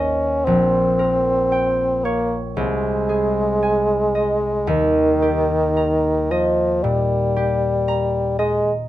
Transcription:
Already playing: harp G#1 D#2 C5 D#5 G#5, bassoon C#4
0.45 harp A#1, bassoon C4
0.99 harp A#4
1.52 harp G5
2.04 bassoon A#3, harp C#5
2.56 harp C2, bassoon G#3
3.09 harp G#4
3.63 harp G#5
4.15 harp D#5
4.67 harp D#2, bassoon D#3
5.22 harp G4
5.77 harp A#5
6.31 bassoon F3, harp D#5
6.83 harp A#2, bassoon G3
7.36 harp G4
7.88 harp A#5
8.39 bassoon G#3, harp D#5

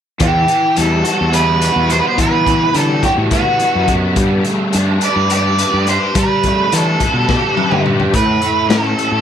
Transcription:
0.20 fingered electric bass E2, overdriven electric guitar E3, lead electric guitar G4, kick, closed hi-hat
0.48 overdriven electric guitar E3, closed hi-hat
0.76 fingered electric bass E2, overdriven electric guitar G3, lead electric guitar A4, closed hi-hat
1.04 overdriven electric guitar F#4, closed hi-hat
1.21 fingered electric bass E2
1.33 overdriven electric guitar B3, lead electric guitar B4, closed hi-hat
1.61 overdriven electric guitar F#4, closed hi-hat
1.76 fingered electric bass E2
1.90 overdriven electric guitar B3, lead electric guitar C5, closed hi-hat
1.99 lead electric guitar B4
2.07 lead electric guitar C5
2.18 fingered electric bass E3, overdriven electric guitar E3, lead electric guitar B4, kick, closed hi-hat
2.46 overdriven electric guitar E3, kick, closed hi-hat
2.74 fingered electric bass D3, overdriven electric guitar G3, lead electric guitar A4, closed hi-hat
3.03 overdriven electric guitar F#4, lead electric guitar G4, kick, closed hi-hat
3.18 fingered electric bass A2
3.31 overdriven electric guitar B3, lead electric guitar F#4, kick, closed hi-hat
3.60 overdriven electric guitar F#4, closed hi-hat
3.75 fingered electric bass F#2
3.88 overdriven electric guitar B3, kick, closed hi-hat
4.16 fingered electric bass G2, overdriven electric guitar G3, kick, closed hi-hat
4.45 overdriven electric guitar A3, closed hi-hat
4.73 fingered electric bass G2, overdriven electric guitar D4, closed hi-hat
5.01 overdriven electric guitar B4, lead electric guitar D5, closed hi-hat
5.16 fingered electric bass G2
5.30 overdriven electric guitar G4, closed hi-hat
5.35 lead electric guitar D5
5.58 overdriven electric guitar B4, closed hi-hat
5.74 fingered electric bass G2
5.87 overdriven electric guitar G4, lead electric guitar C5, closed hi-hat
6.15 fingered electric bass G3, overdriven electric guitar G3, lead electric guitar B4, kick, closed hi-hat
6.43 overdriven electric guitar A3, kick, closed hi-hat
6.72 fingered electric bass E3, overdriven electric guitar D4, lead electric guitar A4, closed hi-hat
7.00 overdriven electric guitar B4, kick, closed hi-hat
7.13 fingered electric bass B2
7.29 overdriven electric guitar G4, kick, snare
7.57 overdriven electric guitar B4, high tom
7.71 fingered electric bass G2, mid tom
7.86 overdriven electric guitar G4, mid tom
8.00 floor tom
8.13 overdriven electric guitar A2, fingered electric bass A2, lead electric guitar B4, kick, closed hi-hat
8.41 overdriven electric guitar A3, closed hi-hat
8.69 fingered electric bass A2, overdriven electric guitar C#4, lead electric guitar A4, snare, closed hi-hat
8.98 overdriven electric guitar A4, closed hi-hat
9.12 fingered electric bass A2

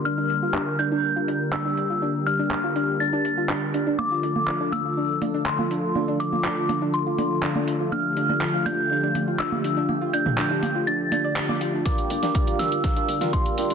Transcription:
Already playing: analog synth pad D3 G3 A#3 A#4
0.05 synth pluck D4, analog synth pad G4, synth bell F6
0.18 synth pluck D4
0.30 open hi-hat
0.42 synth pluck F4
0.54 synth pluck D4, clap
0.79 synth pluck D4, synth bell G6, open hi-hat
0.92 synth pluck D4
1.16 synth pluck F4
1.28 synth pluck D4, open hi-hat
1.53 synth pluck D4, synth bell E6, clap
1.65 synth pluck D4
1.77 open hi-hat
1.90 synth pluck F4
2.02 synth pluck D4
2.27 synth pluck D4, synth bell F6, open hi-hat
2.39 synth pluck D4
2.51 clap
2.64 synth pluck F4
2.76 synth pluck D4, open hi-hat
3.00 synth pluck D4, synth bell A6
3.13 synth pluck D4
3.25 open hi-hat
3.38 synth pluck F4
3.49 synth pluck D4, clap
3.74 synth pluck D4, open hi-hat
3.87 synth pluck D4
3.99 analog synth pad D3 F3 A3 F4 A4, synth bell D6, high conga
4.11 synth pluck F4
4.23 synth pluck D4, open hi-hat
4.36 high conga
4.48 synth pluck D4, clap
4.60 synth pluck D4
4.72 synth bell E6, open hi-hat, high conga
4.85 synth pluck F4
4.97 synth pluck D4
5.22 synth pluck D4, open hi-hat, high conga
5.34 synth pluck D4
5.46 synth bell C6, clap
5.59 synth pluck F4, high conga
5.71 synth pluck D4, open hi-hat
5.95 synth pluck D4, high conga
6.08 synth pluck D4
6.20 synth bell D6, open hi-hat
6.33 synth pluck F4, high conga
6.44 synth pluck D4, clap
6.69 synth pluck D4, open hi-hat, high conga
6.82 synth pluck D4
6.94 synth bell C6
7.06 synth pluck F4
7.18 synth pluck D4, open hi-hat, high conga
7.43 synth pluck D4, clap
7.55 synth pluck D4, high conga
7.68 open hi-hat
7.80 synth pluck F4
7.92 synth pluck D4, analog synth pad G4, synth bell F6, high conga
8.17 synth pluck D4, open hi-hat
8.29 synth pluck D4, high conga
8.41 clap
8.54 synth pluck F4
8.66 synth pluck D4, synth bell G6, open hi-hat, high conga
8.91 synth pluck D4
9.03 synth pluck D4
9.15 open hi-hat, high conga
9.28 synth pluck F4
9.39 synth pluck D4, synth bell E6, clap
9.52 high conga
9.64 synth pluck D4, open hi-hat
9.77 synth pluck D4
9.89 high conga
10.01 synth pluck F4
10.13 synth pluck D4, synth bell G6, open hi-hat
10.26 mid tom, high conga
10.38 synth pluck D4, clap
10.51 synth pluck D4
10.63 open hi-hat, high conga
10.75 synth pluck F4
10.87 synth pluck D4, synth bell A6
11.12 synth pluck D4, open hi-hat, high conga
11.24 synth pluck D5
11.36 clap
11.49 synth pluck D5, high conga
11.61 synth pluck F4, open hi-hat
11.74 synth pluck D4
11.86 analog synth pad D3 G3 A#3 F4 G4, supersaw synth F4 G4 A#4 D5 F5, synth bell D6, kick, snare, closed hi-hat
11.98 supersaw synth F4 G4 A#4 D5 G5, closed hi-hat
12.10 analog synth bass G1, synth pluck D4, open hi-hat
12.23 synth pluck D4, supersaw synth F4 G4 A#4 D5 G5, snare, closed hi-hat
12.35 supersaw synth F4 G4 A#4 D5 F5, kick, closed hi-hat
12.47 synth pluck F4, closed hi-hat
12.59 analog synth bass G1, synth pluck D4, supersaw synth A#4, synth bell E6, snare, open hi-hat
12.72 closed hi-hat
12.84 synth pluck D4, supersaw synth F4 G4 A#4 D5 F5, kick, snare, closed hi-hat
12.96 synth pluck D4, supersaw synth F4 G4 A#4 D5 F5, closed hi-hat
13.08 analog synth bass G1, open hi-hat
13.21 supersaw synth F4 G4 A#4 D5 F5, synth pluck F4, snare, closed hi-hat
13.33 synth pluck D4, synth bell C6, kick, closed hi-hat
13.46 closed hi-hat
13.58 analog synth bass G1, synth pluck D4, supersaw synth F4 G4 A#4 D5 F5, open hi-hat
13.70 synth pluck D4, closed hi-hat

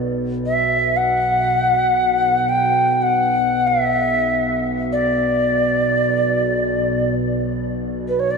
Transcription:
Already playing: ambient pad B1 B2, kalimba B4
0.46 native american-style wooden flute E5
0.96 native american-style wooden flute F#5
2.49 native american-style wooden flute G5
3.02 native american-style wooden flute F#5
3.67 native american-style wooden flute E5
4.92 native american-style wooden flute D5
8.08 native american-style wooden flute B4
8.19 native american-style wooden flute C#5
8.31 native american-style wooden flute D5

